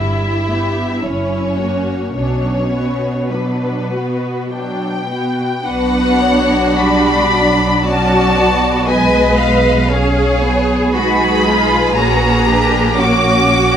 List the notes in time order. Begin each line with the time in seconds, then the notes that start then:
Already playing: G1 G2 G3 E4 E5
0.00 E4
0.50 B3 G4
1.04 F#1 F#2 C#4 E4 C#5
1.59 A#3 F#4
2.16 B1 B2 F#3 C#4 D4 C#5
2.74 B3 F#4
3.32 F#3 B3 D4 B4
3.93 B3 F#4
4.53 F#3 D4 G5
5.11 B3 F#4
5.65 B1 B3 D4 F#4 B4 F#5
6.22 C#5
6.79 G3 D4 D5 B5
7.34 F#3
7.84 C#4 F#4 D5 A5
8.38 B3
8.87 G#3 B3 B4 D#5 G#5
9.39 F5
9.90 C#4 G#4 C#5
10.42 B3
10.93 G#3 D#4 F#4 G#4 B4 B5
11.47 F4
11.96 A#1 A#3 C#4 F#4 A#5
12.47 D4 G4
12.97 C#4 F#4 C#5 D6
13.50 F#4